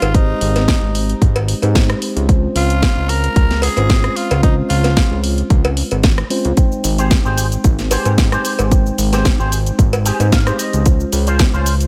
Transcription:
Already playing: tine electric piano G#3 C4 D#4 G4 C5, tenor saxophone F4
0.02 analog synth bass G#1, closed hi-hat, cowbell
0.13 tine electric piano G#3 C4 D#4 G4 C5, tenor saxophone D#4, kick, closed hi-hat
0.41 analog synth bass G#1, open hi-hat
0.56 snare, closed hi-hat, cowbell
0.68 kick, snare, closed hi-hat
0.82 analog synth bass G#1
0.95 open hi-hat
1.09 closed hi-hat
1.22 analog synth bass G#1, kick, closed hi-hat
1.36 closed hi-hat, cowbell
1.48 open hi-hat
1.62 analog synth bass G#2, tine electric piano G#3 C4 D#4 G4 C5, closed hi-hat, cowbell
1.75 kick, snare, closed hi-hat
1.90 cross-stick, closed hi-hat
2.02 open hi-hat
2.16 analog synth bass C#2, closed hi-hat
2.28 tine electric piano G#3 C4 C#4 F4 C5, kick, closed hi-hat
2.55 analog synth bass C#2, tenor saxophone F4, open hi-hat
2.70 closed hi-hat
2.82 kick, snare, closed hi-hat
2.97 analog synth bass C#2
3.09 tenor saxophone A#4, open hi-hat
3.24 closed hi-hat
3.36 analog synth bass C#2, kick, closed hi-hat
3.51 snare, closed hi-hat
3.62 tenor saxophone G#4, open hi-hat, cowbell
3.76 analog synth bass G#1, tine electric piano G#3 C4 C#4 F4 C5, closed hi-hat, cowbell
3.90 kick, snare, closed hi-hat
4.04 cross-stick, closed hi-hat
4.16 tenor saxophone F4, open hi-hat
4.31 analog synth bass C#2, closed hi-hat, cowbell
4.42 tine electric piano G#3 C4 C#4 F4 C5, tenor saxophone D#4, kick, closed hi-hat
4.70 analog synth bass C#2, tenor saxophone F4, open hi-hat
4.84 snare, closed hi-hat, cowbell
4.97 kick, snare, closed hi-hat
5.11 analog synth bass C#2
5.24 open hi-hat
5.38 closed hi-hat
5.50 analog synth bass C#2, kick, closed hi-hat
5.65 closed hi-hat, cowbell
5.77 open hi-hat
5.91 analog synth bass G#1, closed hi-hat, cowbell
6.03 kick, snare, closed hi-hat
6.18 cross-stick, closed hi-hat
6.30 tine electric piano G#3 C4 C#4 F4 C5, open hi-hat
6.45 analog synth bass C#2, closed hi-hat
6.56 tine electric piano G#3 C4 D#4 C5 G5, kick, closed hi-hat, cabasa
6.72 cabasa
6.84 analog synth bass G#1, open hi-hat, cabasa
6.98 clean electric guitar G4 G#4 C5, closed hi-hat, cabasa
7.11 kick, snare, closed hi-hat, cabasa
7.25 analog synth bass G#1, clean electric guitar G4 G#4 C5, cabasa
7.38 open hi-hat, cabasa
7.52 closed hi-hat, cabasa
7.64 analog synth bass G#1, muted clean electric guitar stroke, kick, closed hi-hat, cabasa
7.79 snare, closed hi-hat, cabasa
7.91 clean electric guitar G4 G#4 C5, open hi-hat, cowbell, cabasa
8.04 analog synth bass G#2, tine electric piano G#3 C4 D#4 C5 G5, closed hi-hat, cowbell, cabasa
8.18 kick, snare, closed hi-hat, cabasa
8.32 clean electric guitar G4 G#4 C5, cross-stick, closed hi-hat, cabasa
8.45 open hi-hat, cabasa
8.59 analog synth bass G#1, closed hi-hat, cowbell, cabasa
8.70 tine electric piano G#3 C4 D#4 C5 G5, kick, closed hi-hat, cabasa
8.86 cabasa
8.98 analog synth bass G#1, open hi-hat, cabasa
9.13 clean electric guitar G4 G#4 C5, snare, closed hi-hat, cowbell, cabasa
9.25 kick, snare, closed hi-hat, cabasa
9.39 analog synth bass G#1, clean electric guitar G4 G#4 C5, cabasa
9.52 open hi-hat, cabasa
9.66 closed hi-hat, cabasa
9.79 analog synth bass G#1, muted clean electric guitar stroke, kick, closed hi-hat, cabasa
9.93 closed hi-hat, cowbell, cabasa
10.05 clean electric guitar G4 G#4 C5 G#5, open hi-hat, cabasa
10.19 analog synth bass G#2, tine electric piano G#3 C4 D#4 C5, closed hi-hat, cowbell, cabasa
10.32 clean electric guitar F5, kick, snare, closed hi-hat, cabasa
10.46 clean electric guitar G4 G#4 C5, cross-stick, closed hi-hat, cabasa
10.59 clean electric guitar D#5, open hi-hat, cabasa
10.73 analog synth bass C#2, closed hi-hat, cabasa
10.85 tine electric piano G#3 C#4 F4 C5, kick, closed hi-hat, cabasa
11.00 cabasa
11.12 analog synth bass C#2, open hi-hat, cabasa
11.27 clean electric guitar C#4 F4 C5, closed hi-hat, cabasa
11.39 kick, snare, closed hi-hat, cabasa
11.54 analog synth bass C#2, clean electric guitar C#4 F4 C5, cabasa
11.66 open hi-hat, cabasa
11.81 closed hi-hat, cabasa

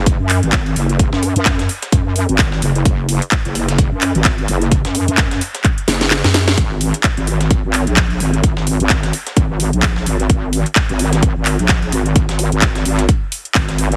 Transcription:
Already playing: wobble bass F#1
0.06 kick, closed hi-hat
0.20 wobble bass F#2
0.29 clap, closed hi-hat, open hi-hat
0.43 wobble bass G#1, closed hi-hat
0.52 kick, snare, clap, closed hi-hat
0.66 closed hi-hat
0.76 wobble bass F#1, closed hi-hat, open hi-hat
0.89 closed hi-hat
0.99 kick, closed hi-hat
1.13 wobble bass F#2, snare
1.23 closed hi-hat, open hi-hat
1.36 wobble bass F#2, closed hi-hat
1.45 kick, snare, clap, closed hi-hat
1.59 snare, closed hi-hat
1.69 closed hi-hat, open hi-hat
1.82 snare, closed hi-hat
1.92 wobble bass F#2, kick, closed hi-hat
2.16 closed hi-hat, open hi-hat
2.29 wobble bass G#1, closed hi-hat
2.39 kick, snare, clap, closed hi-hat, open hi-hat
2.52 snare
2.62 wobble bass F#1, closed hi-hat, open hi-hat
2.75 closed hi-hat
2.85 wobble bass F#1, kick, closed hi-hat
3.09 closed hi-hat, open hi-hat
3.22 closed hi-hat
3.32 kick, snare, clap, closed hi-hat
3.45 wobble bass F#1, closed hi-hat
3.55 closed hi-hat, open hi-hat
3.68 snare, closed hi-hat
3.78 kick, closed hi-hat
3.92 wobble bass F#2
4.01 clap, closed hi-hat, open hi-hat
4.15 wobble bass G#1, closed hi-hat
4.25 kick, snare, clap, closed hi-hat
4.38 closed hi-hat
4.48 wobble bass F#1, closed hi-hat, open hi-hat
4.61 closed hi-hat
4.71 kick, closed hi-hat
4.85 wobble bass F#2, snare, closed hi-hat
4.95 closed hi-hat, open hi-hat
5.08 wobble bass F#2, closed hi-hat
5.18 kick, snare, clap, closed hi-hat
5.31 snare, closed hi-hat
5.41 closed hi-hat, open hi-hat
5.55 snare, closed hi-hat
5.64 kick, clap, closed hi-hat
5.78 closed hi-hat
5.88 wobble bass F#1, snare, closed hi-hat, open hi-hat
6.01 snare, closed hi-hat
6.11 snare, clap, closed hi-hat, open hi-hat
6.24 wobble bass F#2, snare, closed hi-hat
6.34 snare, closed hi-hat, open hi-hat
6.48 snare, closed hi-hat
6.58 wobble bass G#1, kick, closed hi-hat
6.81 closed hi-hat, open hi-hat
6.94 closed hi-hat
7.04 kick, snare, clap, closed hi-hat
7.17 wobble bass G#1, closed hi-hat
7.27 closed hi-hat, open hi-hat
7.41 snare, closed hi-hat
7.51 kick, closed hi-hat
7.64 wobble bass G#1
7.73 clap, closed hi-hat, open hi-hat
7.87 wobble bass A#1, closed hi-hat
7.97 kick, snare, clap, closed hi-hat
8.10 closed hi-hat
8.20 wobble bass G#1, closed hi-hat, open hi-hat
8.34 closed hi-hat
8.44 kick, closed hi-hat
8.57 wobble bass G#1, snare
8.67 closed hi-hat, open hi-hat
8.80 wobble bass G#1, closed hi-hat
8.90 kick, snare, clap, closed hi-hat
9.03 snare, closed hi-hat
9.13 closed hi-hat, open hi-hat
9.27 snare, closed hi-hat
9.37 wobble bass G#1, kick, closed hi-hat
9.60 closed hi-hat, open hi-hat
9.73 wobble bass A#1, closed hi-hat
9.83 kick, snare, clap, closed hi-hat, open hi-hat
9.96 snare
10.06 wobble bass G#1, closed hi-hat, open hi-hat
10.20 closed hi-hat
10.30 wobble bass G#1, kick, closed hi-hat
10.53 closed hi-hat, open hi-hat
10.66 closed hi-hat
10.76 kick, snare, clap, closed hi-hat
10.89 wobble bass G#1, closed hi-hat
10.99 closed hi-hat, open hi-hat
11.13 snare, closed hi-hat
11.23 kick, closed hi-hat
11.36 wobble bass G#1
11.45 clap, closed hi-hat, open hi-hat
11.59 wobble bass A#1, closed hi-hat
11.69 kick, snare, clap, closed hi-hat
11.82 closed hi-hat
11.92 wobble bass G#1, closed hi-hat, open hi-hat
12.06 closed hi-hat
12.16 kick, closed hi-hat
12.29 wobble bass G#1, snare, closed hi-hat
12.39 closed hi-hat, open hi-hat
12.52 wobble bass G#1, closed hi-hat
12.62 kick, snare, clap, closed hi-hat
12.75 snare, closed hi-hat
12.85 wobble bass G#1, closed hi-hat, open hi-hat
12.99 snare, closed hi-hat
13.09 kick, closed hi-hat
13.32 closed hi-hat, open hi-hat
13.45 closed hi-hat
13.55 wobble bass G#1, kick, snare, clap, closed hi-hat, open hi-hat
13.68 snare, closed hi-hat
13.78 closed hi-hat, open hi-hat
13.92 closed hi-hat

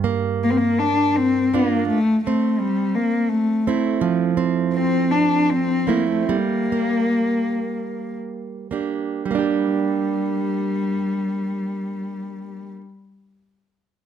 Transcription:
Already playing: steel-string acoustic guitar G2 G3 D4 G4
0.04 steel-string acoustic guitar A#3
0.44 cello A#3
0.50 cello C4
0.57 cello A#3
0.79 cello D4
1.16 cello C4
1.53 steel-string acoustic guitar A#3 D4 F4, cello A#3
1.88 cello A3
2.24 cello A3, steel-string acoustic guitar C4
2.59 cello G3
2.95 cello A#3
3.29 cello A3
3.67 steel-string acoustic guitar A3 C4 E4
4.01 steel-string acoustic guitar F3
4.37 steel-string acoustic guitar C4
4.74 cello C4
5.11 cello D4
5.50 cello C4
5.87 steel-string acoustic guitar A3 C4 E4, cello A#3
6.10 cello A3
6.23 cello C4
6.29 steel-string acoustic guitar G3, cello A#3
6.72 steel-string acoustic guitar A#3
8.71 steel-string acoustic guitar A#3 D4 G4
9.25 steel-string acoustic guitar G3
9.31 cello G3, steel-string acoustic guitar A#3
9.35 steel-string acoustic guitar D4 G4

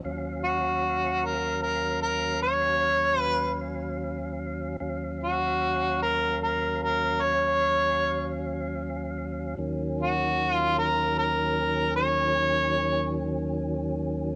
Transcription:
0.04 tonewheel organ D#2 F#3 C#4 F5
0.44 harmonica F#4
1.25 harmonica A#4
1.62 harmonica A#4
2.02 harmonica A#4
2.43 harmonica C#5
3.22 harmonica B4
4.80 tonewheel organ D#2 F#3 C#4 F5
5.23 harmonica F#4
6.02 harmonica A#4
6.43 harmonica A#4
6.83 harmonica A#4
7.22 harmonica C#5
9.57 tonewheel organ D#2 D#3 F#3 C#4
10.01 harmonica F#4
10.53 harmonica F4
10.78 harmonica A#4
11.18 harmonica A#4
11.96 harmonica C#5

